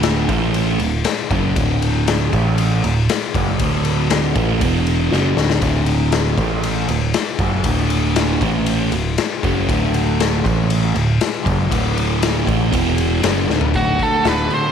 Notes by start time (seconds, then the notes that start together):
Already playing: D1 D2 A2 D3
0.03 snare, ride
0.29 A1 A2 E3 A3, kick, ride
0.54 ride
0.79 D1 D2 A2, ride
1.04 snare, ride
1.30 F#1 F#2 C#3 F#3, kick, ride
1.56 D1 D2 A2 D3, kick, ride
1.82 ride
2.07 snare, ride
2.32 A1 A2 E3 A3, kick, ride
2.58 ride
2.84 D1 D2 A2, ride
3.09 snare, ride
3.34 F#1 F#2 C#3 F#3, kick, ride
3.59 D1 D2 A2 D3, kick, ride
3.85 ride
4.10 snare, ride
4.35 A1 A2 E3 A3, kick, ride
4.61 E1 E2 B2 E3, kick, ride
4.87 ride
5.11 F#1 F#2 C#3 F#3, snare
5.36 D1 D2 A2 D3, snare
5.50 snare
5.61 D1 D2 A2 D3, kick, ride
5.86 ride
6.12 snare, ride
6.38 A1 A2 E3 A3, kick, ride
6.63 ride
6.88 D1 D2 A2, ride
7.14 snare, ride
7.39 F#1 F#2 C#3 F#3, kick, ride
7.64 D1 D2 A2 D3, kick, ride
7.90 ride
8.16 snare, ride
8.41 A1 A2 E3 A3, kick, ride
8.66 ride
8.92 D1 D2 A2, ride
9.18 snare, ride
9.43 F#1 F#2 C#3 F#3, kick, ride
9.69 D1 D2 A2 D3, kick, ride
9.94 ride
10.20 snare, ride
10.44 A1 A2 E3 A3, kick, ride
10.70 ride
10.94 D1 D2 A2, ride
11.21 snare, ride
11.44 F#1 F#2 C#3 F#3, kick, ride
11.70 D1 D2 A2 D3, kick, ride
11.97 ride
12.22 snare, ride
12.45 A1 A2 E3 A3, kick, ride
12.71 E1 E2 B2 E3, kick, ride
12.98 ride
13.22 F#1 F#2 C#3 F#3, snare, ride
13.48 D1 D2 A2 D3, snare
13.61 floor tom
13.73 D1 D2 A2 D3 F#4, kick, open hi-hat
13.99 A2 D3, kick, open hi-hat
14.03 A4
14.25 D1 D2 A2 D3 B4, snare, open hi-hat
14.50 D2 A2 D3, open hi-hat
14.54 C5